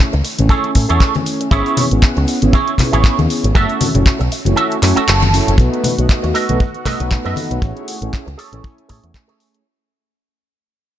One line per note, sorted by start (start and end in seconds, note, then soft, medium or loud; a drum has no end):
0.00 0.12 A3 medium
0.00 0.12 C#4 medium
0.00 0.12 E4 medium
0.00 0.12 G#4 medium
0.00 0.12 C#5 medium
0.13 0.21 C#2 medium
0.13 muted clean electric guitar stroke medium
0.13 closed hi-hat soft
0.24 muted clean electric guitar stroke soft
0.24 open hi-hat medium
0.24 shaker medium
0.38 0.46 A1 medium
0.38 1.49 A3 medium
0.38 1.49 C#4 medium
0.38 1.49 E4 medium
0.38 1.50 C#5 medium
0.38 1.49 G#5 medium
0.38 closed hi-hat medium
0.38 high conga medium
0.38 shaker soft
0.49 0.69 G#4 medium
0.49 0.70 A4 medium
0.49 0.70 C#5 loud
0.49 kick loud
0.49 closed hi-hat soft
0.49 shaker medium
0.64 closed hi-hat soft
0.75 0.85 A2 medium
0.75 kick medium
0.75 open hi-hat loud
0.75 shaker medium
0.89 0.97 E2 medium
0.89 1.15 G#4 medium
0.89 1.15 A4 medium
0.89 1.15 C#5 loud
0.89 closed hi-hat medium
0.89 shaker soft
1.00 kick loud
1.00 clap loud
1.00 closed hi-hat medium
1.00 shaker medium
1.15 closed hi-hat soft
1.15 high conga medium
1.15 shaker soft
1.26 open hi-hat medium
1.26 shaker medium
1.40 muted clean electric guitar stroke soft
1.40 closed hi-hat soft
1.40 shaker soft
1.51 1.61 G#1 loud
1.51 1.88 B3 medium
1.51 1.88 C#4 medium
1.51 1.84 E4 loud
1.51 1.88 E4 medium
1.51 1.84 G#4 loud
1.51 1.88 G#4 medium
1.51 1.85 C#5 loud
1.51 1.88 C#5 loud
1.51 kick loud
1.51 closed hi-hat medium
1.51 shaker medium
1.66 closed hi-hat soft
1.66 shaker soft
1.77 open hi-hat loud
1.77 high conga medium
1.77 low conga medium
1.77 shaker medium
1.91 1.99 G#1 medium
1.91 2.39 B3 medium
1.91 2.39 C#4 medium
1.91 2.39 E4 medium
1.91 2.39 G#4 medium
1.91 2.39 F#5 medium
1.91 closed hi-hat medium
1.91 shaker soft
2.03 kick loud
2.03 clap loud
2.03 closed hi-hat medium
2.03 shaker medium
2.16 2.24 C#2 medium
2.16 muted clean electric guitar stroke medium
2.16 closed hi-hat soft
2.27 muted clean electric guitar stroke soft
2.27 open hi-hat medium
2.27 shaker loud
2.42 2.50 G#1 medium
2.42 2.56 B3 loud
2.42 2.56 C#4 medium
2.42 2.56 E4 medium
2.42 2.56 G#4 medium
2.42 2.57 C#5 loud
2.42 closed hi-hat medium
2.42 high conga medium
2.42 shaker soft
2.53 2.73 E4 medium
2.53 2.73 G#4 medium
2.53 2.74 C#5 loud
2.53 kick loud
2.53 closed hi-hat medium
2.53 shaker medium
2.68 closed hi-hat soft
2.78 3.52 B3 medium
2.78 3.52 C#4 medium
2.78 3.52 E4 medium
2.78 3.53 G#4 medium
2.78 3.53 C#5 medium
2.78 kick medium
2.78 clap medium
2.78 open hi-hat loud
2.78 low conga medium
2.78 shaker medium
2.92 3.09 G#1 loud
2.92 3.18 E4 medium
2.92 3.19 G#4 medium
2.92 3.19 C#5 loud
2.92 closed hi-hat medium
2.92 shaker soft
3.04 kick loud
3.04 clap loud
3.04 closed hi-hat medium
3.04 shaker soft
3.19 3.26 D#2 loud
3.19 closed hi-hat soft
3.19 high conga medium
3.19 shaker soft
3.30 open hi-hat medium
3.30 shaker medium
3.43 3.51 G#1 medium
3.43 muted clean electric guitar stroke soft
3.43 closed hi-hat medium
3.43 shaker soft
3.54 3.91 A3 medium
3.54 3.91 C#4 medium
3.54 3.91 E4 medium
3.54 3.87 F#4 loud
3.54 3.91 F#4 medium
3.54 3.88 A4 loud
3.54 3.91 C#5 medium
3.54 3.88 E5 loud
3.54 kick loud
3.54 closed hi-hat medium
3.54 shaker medium
3.69 closed hi-hat soft
3.69 shaker soft
3.81 open hi-hat loud
3.81 high conga medium
3.81 low conga medium
3.81 shaker loud
3.94 4.02 F#1 medium
3.94 4.19 A3 medium
3.94 4.19 C#4 medium
3.94 4.19 E4 medium
3.94 4.19 F#4 medium
3.94 4.19 C#5 medium
3.94 closed hi-hat medium
3.94 low conga medium
3.94 shaker soft
4.06 kick loud
4.06 clap loud
4.06 closed hi-hat medium
4.06 shaker medium
4.19 4.28 B1 medium
4.19 muted clean electric guitar stroke medium
4.19 closed hi-hat soft
4.19 shaker soft
4.31 muted clean electric guitar stroke soft
4.31 open hi-hat medium
4.31 shaker medium
4.45 4.53 F#1 medium
4.45 4.80 A3 medium
4.45 4.80 C#4 medium
4.45 4.80 E4 medium
4.45 4.80 F#4 medium
4.45 4.80 C#5 medium
4.45 closed hi-hat medium
4.45 high conga medium
4.45 shaker soft
4.56 4.76 F#4 medium
4.56 4.77 A4 medium
4.56 4.77 E5 loud
4.56 closed hi-hat medium
4.56 shaker soft
4.71 closed hi-hat soft
4.71 shaker soft
4.82 4.92 F#2 loud
4.82 4.98 A3 medium
4.82 4.99 C#4 medium
4.82 4.99 E4 medium
4.82 4.99 F#4 medium
4.82 4.99 C#5 loud
4.82 clap medium
4.82 open hi-hat loud
4.82 shaker loud
4.96 5.21 F#4 loud
4.96 5.22 A4 medium
4.96 5.07 E5 loud
4.96 muted picked electric bass stroke soft
4.96 closed hi-hat medium
4.96 shaker soft
5.07 5.39 F#1 medium
5.07 5.55 A5 medium
5.07 clap loud
5.07 closed hi-hat medium
5.07 shaker medium
5.22 closed hi-hat soft
5.22 high conga medium
5.22 shaker soft
5.33 5.56 A3 medium
5.33 5.56 C#4 medium
5.33 5.56 E4 medium
5.33 5.56 F#4 medium
5.33 5.56 C#5 medium
5.33 open hi-hat medium
5.33 shaker loud
5.47 5.55 F#1 loud
5.47 muted clean electric guitar stroke soft
5.47 closed hi-hat medium
5.47 shaker soft
5.58 5.67 B1 loud
5.58 5.95 A3 medium
5.58 5.95 B3 medium
5.58 5.95 D#4 medium
5.58 9.66 F#4 medium
5.58 5.95 F#4 medium
5.58 5.95 B4 loud
5.58 9.66 F#5 medium
5.58 kick loud
5.58 closed hi-hat medium
5.74 closed hi-hat soft
5.84 open hi-hat loud
5.84 high conga medium
5.84 low conga medium
5.98 6.06 B1 medium
5.98 6.46 A3 medium
5.98 6.46 B3 medium
5.98 6.46 D#4 medium
5.98 6.46 F#4 medium
5.98 6.46 D#5 medium
5.98 closed hi-hat medium
6.09 muted clean electric guitar stroke soft
6.09 kick loud
6.09 clap loud
6.09 closed hi-hat medium
6.23 6.31 D#2 medium
6.23 muted clean electric guitar stroke medium
6.23 closed hi-hat soft
6.34 6.60 A4 loud
6.34 6.60 B4 medium
6.34 6.61 D#5 loud
6.34 open hi-hat medium
6.49 6.57 B1 medium
6.49 6.63 A3 medium
6.49 6.63 B3 medium
6.49 6.63 D#4 medium
6.49 6.63 F#4 medium
6.49 6.63 B4 loud
6.49 closed hi-hat medium
6.49 high conga medium
6.60 kick loud
6.60 closed hi-hat soft
6.74 closed hi-hat soft
6.85 7.59 A3 medium
6.85 7.59 B3 medium
6.85 7.60 D#4 medium
6.85 7.60 F#4 medium
6.85 7.00 A4 loud
6.85 7.00 B4 loud
6.85 7.60 B4 medium
6.85 7.01 D#5 loud
6.85 kick medium
6.85 clap medium
6.85 open hi-hat loud
6.85 low conga medium
7.00 7.15 B1 loud
7.00 closed hi-hat medium
7.11 muted clean electric guitar stroke soft
7.11 kick loud
7.11 clap loud
7.11 closed hi-hat medium
7.25 7.33 F#2 medium
7.25 7.62 A4 medium
7.25 7.62 B4 medium
7.25 7.62 D#5 medium
7.25 closed hi-hat soft
7.36 open hi-hat medium
7.36 high conga medium
7.51 7.58 B1 medium
7.51 closed hi-hat medium
7.62 7.71 A1 medium
7.62 7.98 A3 medium
7.62 7.98 C#4 medium
7.62 7.98 E4 medium
7.62 7.98 G#4 medium
7.62 7.99 C#5 medium
7.62 kick loud
7.62 closed hi-hat medium
7.77 closed hi-hat soft
7.88 open hi-hat loud
8.02 8.09 A1 medium
8.02 8.26 A3 medium
8.02 8.26 C#4 medium
8.02 8.26 E4 medium
8.02 8.26 G#4 medium
8.02 8.26 C#5 medium
8.02 closed hi-hat medium
8.12 muted clean electric guitar stroke soft
8.12 kick loud
8.12 clap loud
8.12 closed hi-hat soft
8.26 8.34 C#2 medium
8.26 muted clean electric guitar stroke medium
8.26 closed hi-hat soft
8.38 8.63 G#4 loud
8.38 8.64 A4 loud
8.38 8.64 C#5 loud
8.38 open hi-hat medium
8.52 8.60 A1 medium
8.52 9.62 A3 medium
8.52 9.62 C#4 medium
8.52 9.63 E4 medium
8.52 9.63 C#5 medium
8.52 9.63 G#5 medium
8.52 closed hi-hat soft
8.64 kick loud
8.64 closed hi-hat soft
8.78 closed hi-hat soft
8.89 8.99 A2 medium
8.89 9.03 G#4 loud
8.89 9.03 A4 medium
8.89 9.04 C#5 loud
8.89 kick medium
8.89 open hi-hat loud
9.04 9.11 E2 medium
9.04 closed hi-hat soft
9.14 muted clean electric guitar stroke soft
9.14 kick loud
9.14 clap loud
9.14 closed hi-hat soft
9.28 9.65 G#4 medium
9.28 9.65 A4 medium
9.28 9.66 C#5 medium
9.28 closed hi-hat soft
9.40 open hi-hat medium
9.54 closed hi-hat soft